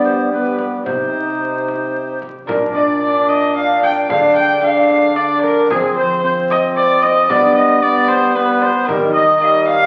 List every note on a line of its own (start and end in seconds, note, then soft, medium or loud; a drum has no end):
0.00 0.87 G3 medium
0.00 2.52 G3 soft
0.00 0.32 B3 medium
0.00 0.87 B3 soft
0.00 0.88 D4 soft
0.00 0.31 G4 medium
0.00 0.83 G4 soft
0.05 0.31 C5 medium
0.05 frame drum soft
0.32 0.85 B3 medium
0.32 0.85 G4 medium
0.32 0.59 B4 medium
0.59 0.65 B4 medium
0.59 frame drum soft
0.82 2.51 C3 soft
0.82 2.22 C3 medium
0.82 2.50 C4 soft
0.82 2.50 D#4 soft
0.82 2.20 D#4 medium
0.82 2.51 G4 soft
0.82 2.19 C5 medium
0.82 frame drum medium
0.87 2.27 G4 medium
1.68 frame drum soft
2.22 frame drum soft
2.46 4.12 A#2 medium
2.46 4.05 D4 medium
2.46 2.99 D4 medium
2.46 4.07 F4 medium
2.46 2.55 A#4 medium
2.46 4.11 A#4 medium
2.46 2.77 A#4 medium
2.46 frame drum medium
2.74 3.01 D5 medium
2.74 2.82 D#5 medium
2.81 3.02 D5 medium
3.02 3.55 D4 medium
3.02 3.08 D5 medium
3.02 3.30 D5 medium
3.29 3.55 D#5 loud
3.29 3.55 D#5 medium
3.29 frame drum soft
3.56 4.09 D4 medium
3.56 3.82 F5 loud
3.56 3.82 F5 medium
3.82 4.11 G5 medium
3.82 3.91 G5 loud
3.82 frame drum medium
4.06 4.59 D4 medium
4.06 4.62 D4 medium
4.06 4.60 F4 medium
4.06 4.62 G#4 medium
4.06 4.36 F5 loud
4.06 4.38 F5 medium
4.06 frame drum medium
4.11 5.73 D3 medium
4.11 5.70 D3 medium
4.36 4.63 G5 medium
4.36 4.62 G5 loud
4.60 5.71 D4 medium
4.60 5.16 D4 medium
4.60 5.68 F4 medium
4.60 5.69 G#4 medium
4.60 5.18 F5 loud
4.60 4.68 G5 medium
4.67 5.17 F5 loud
4.90 frame drum soft
5.16 5.70 D4 medium
5.16 5.41 D5 loud
5.16 5.45 D5 medium
5.42 5.72 A#4 loud
5.42 5.71 A#4 medium
5.42 frame drum medium
5.67 7.27 F3 medium
5.67 7.33 F3 medium
5.67 7.31 C4 medium
5.67 6.23 C4 medium
5.67 7.31 F4 medium
5.67 7.32 G#4 medium
5.67 5.96 G#4 loud
5.67 frame drum medium
5.72 5.97 G#4 medium
5.96 6.23 C5 loud
5.96 6.04 C5 medium
6.24 7.28 C4 medium
6.24 6.53 C5 medium
6.24 6.32 C5 loud
6.50 6.59 D#5 loud
6.50 6.77 D#5 medium
6.50 frame drum soft
6.76 7.03 D5 loud
6.76 7.07 D5 medium
7.02 7.31 D#5 loud
7.02 7.33 D#5 medium
7.02 frame drum medium
7.27 8.72 G3 medium
7.27 9.86 G3 medium
7.27 8.90 B3 medium
7.27 7.82 B3 medium
7.27 8.90 D4 medium
7.27 8.86 G4 medium
7.27 7.54 D5 loud
7.27 frame drum medium
7.32 7.58 D5 loud
7.54 7.84 D#5 loud
7.54 7.85 D#5 medium
7.82 8.35 B3 medium
7.82 8.10 D5 loud
7.82 8.09 D5 medium
8.08 8.36 C5 loud
8.08 8.36 C5 medium
8.08 frame drum medium
8.35 8.88 B3 medium
8.35 8.60 B4 loud
8.35 8.63 B4 medium
8.61 8.89 C5 loud
8.61 8.66 D5 medium
8.61 frame drum medium
8.65 8.88 C5 medium
8.86 9.86 D#3 medium
8.86 9.23 G3 medium
8.86 9.86 D#4 medium
8.86 9.86 G4 medium
8.86 9.13 A#4 loud
8.86 8.95 A#4 medium
8.86 frame drum medium
9.14 9.40 D#5 loud
9.14 9.42 D#5 medium
9.40 9.86 G3 medium
9.40 9.67 D#5 loud
9.40 9.48 F5 medium
9.47 9.68 D#5 loud
9.68 9.86 F5 loud
9.68 9.86 F5 medium
9.68 frame drum soft